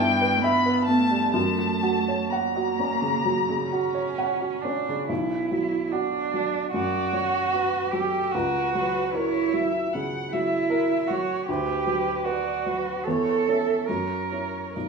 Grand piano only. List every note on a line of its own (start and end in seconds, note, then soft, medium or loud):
0.00 1.31 G2 loud
0.00 0.12 B3 medium
0.00 0.33 E4 medium
0.22 0.56 B4 medium
0.44 0.79 E5 medium
0.66 1.02 B4 medium
0.88 1.25 B3 medium
1.11 1.35 G3 medium
1.34 3.20 F#2 medium
1.58 1.97 F#3 medium
1.83 2.21 F#4 medium
2.08 2.45 C#5 medium
2.32 2.69 F#5 medium
2.56 2.92 F#4 medium
2.79 3.16 C#4 medium
3.02 3.39 C#3 medium
3.25 3.62 F#3 medium
3.49 3.86 C#3 medium
3.72 4.09 F#4 medium
3.95 4.32 C#5 medium
4.18 4.56 F#5 medium
4.41 4.79 F#4 medium
4.65 5.01 C#4 medium
4.88 5.10 C#3 medium
5.09 6.69 B1 medium
5.51 6.17 F#3 medium
5.93 6.58 F#4 medium
6.34 6.97 F#3 soft
6.74 7.38 F#2 medium
7.13 7.78 F#3 soft
7.53 8.18 F#4 medium
7.93 8.34 F#3 medium
8.35 9.89 C#2 medium
8.75 9.38 F#3 medium
9.15 9.78 A#4 medium
9.54 10.16 F#3 medium
9.95 10.56 C#3 medium
10.33 10.94 F#3 medium
10.70 11.33 A#4 medium
11.10 11.49 F#3 medium
11.49 13.01 D2 medium
11.87 12.49 F#3 medium
12.26 12.89 B4 medium
12.66 13.06 F#3 soft
13.07 13.86 E2 medium
13.48 13.84 C#4 soft
13.48 13.85 C#5 soft
13.89 14.73 F#2 medium
14.32 14.72 E4 soft
14.32 14.72 C#5 soft
14.76 14.89 B1 soft